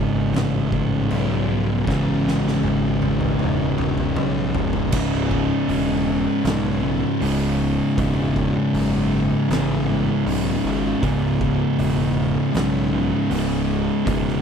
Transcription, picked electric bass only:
Already playing: G#1
0.33 A1
1.10 B1
1.87 A1
2.63 G#1
3.40 E1
3.78 E1
4.16 B1
4.54 E1
4.93 C#1
5.68 E1
6.45 B1
7.22 C#1
7.98 E1
8.74 F#1
9.50 A1
10.26 B1
10.64 G#1
11.03 C#1
11.78 E1
12.55 B1
13.31 C#1
14.06 E1

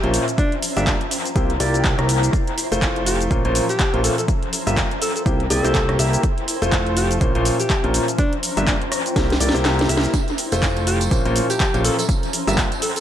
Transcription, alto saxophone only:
Already playing: G4
0.38 D4
0.77 D4
0.87 D4
3.06 G4
3.69 G4
4.04 A4
4.18 A4
5.01 A4
5.16 A4
5.50 A4
6.97 G4
7.60 G4
8.19 D4
8.57 D4
8.67 D4
10.87 G4
11.50 G4
11.84 A4
11.99 A4
12.82 A4
12.96 A4

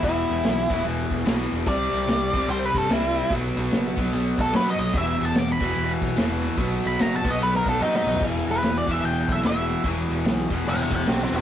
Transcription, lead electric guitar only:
0.04 E4
1.68 D5
2.51 C5
2.65 B4
2.78 A4
2.93 E4
4.41 A4
4.56 B4
4.70 D#5
4.98 E5
5.25 A5
5.39 D6
5.52 B5
6.87 B5
7.02 A#5
7.16 A5
7.31 D#5
7.43 B4
7.56 A#4
7.69 A4
7.82 D#4
7.97 D#4
8.51 B4
8.78 D5
8.91 E5
9.05 G5
9.32 E5
9.47 E5
10.68 E5 G5
10.82 E5 G5
10.95 E5 G5
11.09 G4 E5
11.24 G4 E5
11.36 G4 E5

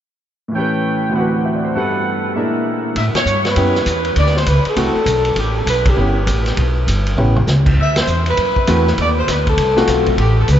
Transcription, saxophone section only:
2.97 E5
3.16 C#5
3.47 B4
4.19 D5
4.38 C5
4.48 B4
4.68 A4
5.39 G4
5.59 A4
5.69 B4
5.88 G4
7.81 E5
8.00 C5
8.29 B4
9.01 D5
9.19 C5
9.31 B4
9.49 A4
10.20 G4
10.40 A4
10.51 B4

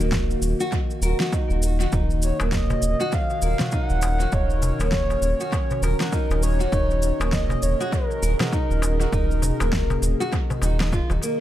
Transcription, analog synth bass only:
0.00 D#1
0.42 D#1
1.02 D#1
1.50 D#1
1.93 D#1
2.41 D#1
2.82 D#1
3.42 D#1
3.90 D#1
4.33 D#1
4.80 D#1
5.22 D#1
5.82 D#1
6.30 D#1
6.72 D#1
7.20 D#1
7.63 D#1
8.23 D#1
8.71 D#1
9.13 D#1
9.61 D#1
10.02 D#1
10.62 D#1
11.10 D#1

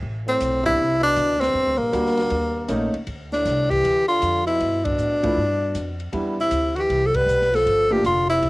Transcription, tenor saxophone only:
0.29 C4
0.66 E4
1.03 D4
1.40 C4
1.78 A#3
3.33 D4
3.70 G4
4.08 F4
4.47 E4
4.85 D4
6.41 E4
6.76 F#4 G4
7.06 A4
7.16 B4
7.55 A4
7.92 G4
8.06 F4
8.29 E4

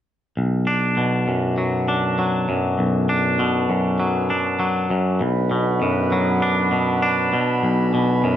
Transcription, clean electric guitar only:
0.37 B1
0.67 D4
0.97 B2
1.28 F#2
1.58 F#3
1.88 D4
2.19 F#3
2.49 F#2
2.79 B1
3.09 D4
3.39 B2
3.70 F#2
4.00 F#3
4.30 D4
4.60 F#3
4.90 F#2
5.21 B1
5.51 B2
5.82 F#2
6.12 F#3
6.42 D4
6.72 B2
7.02 D4
7.33 B2
7.63 B1
7.94 B2
8.24 F#2

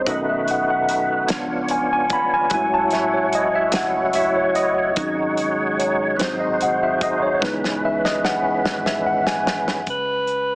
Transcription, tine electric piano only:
0.08 D#3 A3 C#4 D#5
0.29 E5
0.51 F#5
0.70 F#5
1.29 F3 B3 D4
1.71 G#5
1.93 G#5
2.13 B5
2.34 G#5
2.53 G#3 A3 E4 G#5
2.74 A5
2.93 E5
3.14 C#5
3.35 D#5
3.55 E5
3.76 F#5
4.15 E5
4.37 C#5
4.56 D#5
4.96 F#3 C#4 D#4
5.79 C#5
6.18 F#3 C4 D#4 C5
6.40 D#5
6.63 F#5
6.83 E5
7.03 D#5
7.22 C#5
7.35 C#5
7.40 E3 B3 D#4 B4
7.85 E5
8.05 D#5
8.25 F#5
8.87 E5
9.07 F#5
9.27 G#5

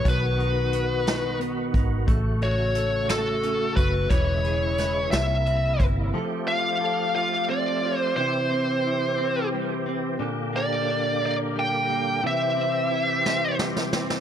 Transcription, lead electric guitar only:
0.08 B4
2.43 C#5
3.10 A4
3.76 B4
4.10 C#5
5.11 E5
6.48 F5
7.16 F5
7.50 D5
7.98 C5
8.16 C5
10.56 D5
11.26 D5
11.59 G5
12.27 E5

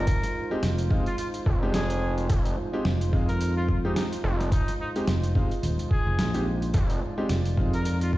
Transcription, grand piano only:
0.51 G#3 C4 D#4 G4
0.90 G#3 C4 D#4 F4
1.63 G#3 C4 D#4 G4
2.73 G#3 C4 D#4 G4
3.13 G#3 C4 D#4 F4
3.85 G#3 C4 D#4 G4
4.96 G#3 C4 D#4 G4
5.36 G#3 C4 D#4 F4
6.34 G#3 C4 D#4 G4
7.18 G#3 C4 D#4 G4
7.57 G#3 C4 D#4 F4

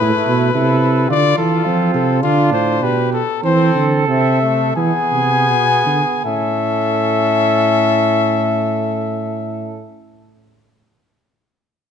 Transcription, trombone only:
0.00 A3
0.54 E4
1.10 F4
1.65 C4
2.22 D4
3.44 C4
4.08 C4
4.42 A3
4.77 B3
6.26 C#4

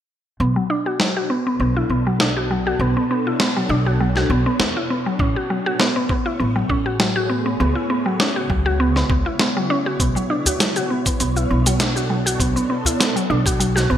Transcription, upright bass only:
0.40 B1
1.60 B1
1.89 B1
2.79 B1
3.69 B1
4.30 B1
4.60 E2
5.19 A1
6.40 A1
6.70 A1
7.60 C#2
8.50 C#2
9.09 C#2
10.00 B1
11.20 B1
11.51 B1
12.40 B1
13.30 B1
13.91 B1

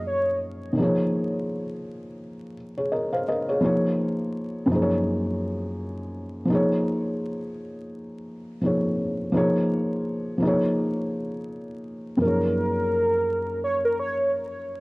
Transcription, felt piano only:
Already playing: F#2 F3 A#3 D#4 G#4 C#5
0.73 D#3 A#3
0.78 F3 D#4 G#4
0.82 C#5
2.78 G#4 C#5
2.92 A#4 D#5
3.13 C5 F5
3.29 A#4 D#5
3.49 G#4 C#5
3.61 F3 A#3 D#4 G#4
3.66 C#5
4.66 F#2 F3 A#3
4.72 D#4 G#4 C5
4.82 C#5
6.45 F3 A#3
6.50 D#4 G#4
6.55 C#5
8.61 F3 A#3 D#4 G#4
8.66 C#5
9.32 F3 A#3 D#4 G#4
9.37 C#5
10.38 F3 A#3
10.42 D#4 G#4
10.47 C#5
12.17 F#2 F3 A#3
12.23 D#4 G#4 C#5

